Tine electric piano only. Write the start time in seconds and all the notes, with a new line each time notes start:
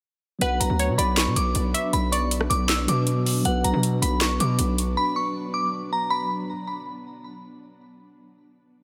0.39 F#3 B3 D4
0.43 F#4 B4
2.87 F#3 B3 D4 F#4 B4
3.42 F#3 B3 D4
3.47 F#4 B4